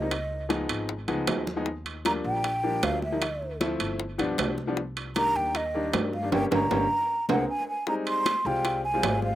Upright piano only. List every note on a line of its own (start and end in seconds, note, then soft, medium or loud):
0.01 0.11 G3 medium
0.01 0.11 A#3 medium
0.01 0.11 C4 medium
0.01 0.12 D#4 medium
0.49 0.90 F3 medium
0.49 0.90 G#3 medium
0.49 0.91 B3 medium
0.49 0.91 D#4 medium
1.08 1.42 F3 medium
1.08 1.42 G#3 medium
1.08 1.42 B3 medium
1.08 1.42 D#4 medium
1.56 1.66 F3 medium
1.56 1.67 G#3 medium
1.56 1.67 B3 medium
1.56 1.67 D#4 medium
2.06 2.46 F3 medium
2.06 2.47 G3 medium
2.06 2.47 A#3 medium
2.06 2.47 D4 medium
2.64 2.98 F3 medium
2.64 2.98 G3 medium
2.64 2.98 A#3 medium
2.64 2.98 D4 medium
3.12 3.22 F3 medium
3.12 3.22 G3 medium
3.12 3.22 A#3 medium
3.12 3.22 D#4 medium
3.60 4.00 F3 medium
3.60 4.00 A3 medium
3.60 4.00 C4 medium
3.60 4.00 E4 medium
4.18 4.53 F3 medium
4.18 4.53 G3 medium
4.18 4.53 B3 medium
4.18 4.53 D4 medium
4.67 4.77 F3 medium
4.67 4.77 G3 medium
4.67 4.78 B3 medium
4.67 4.78 D4 medium
5.16 5.57 D#3 medium
5.16 5.57 G3 medium
5.16 5.57 A#3 medium
5.16 5.57 D4 medium
5.74 6.08 D#3 medium
5.74 6.09 G3 medium
5.74 6.09 A#3 medium
5.74 6.09 D4 medium
6.22 6.32 D#3 medium
6.22 6.31 G3 medium
6.22 6.31 A#3 medium
6.22 6.33 D4 medium
6.32 6.45 G3 medium
6.32 6.45 A#3 medium
6.32 6.45 C#4 medium
6.51 6.64 G3 medium
6.51 6.64 A#3 medium
6.51 6.64 C#4 medium
6.71 6.84 G3 medium
6.71 6.84 A#3 medium
6.71 6.84 C#4 medium
7.30 7.42 G#3 medium
7.30 7.42 A#3 medium
7.30 7.42 C4 medium
7.87 8.28 G3 medium
7.87 8.28 G#3 medium
7.87 8.28 C4 medium
7.87 8.28 D#4 medium
8.46 8.79 G3 medium
8.46 8.80 G#3 medium
8.46 8.80 C4 medium
8.46 8.80 F4 medium
8.94 9.28 G3 medium
8.94 9.28 G#3 medium
8.94 9.28 C4 medium
8.94 9.28 F4 medium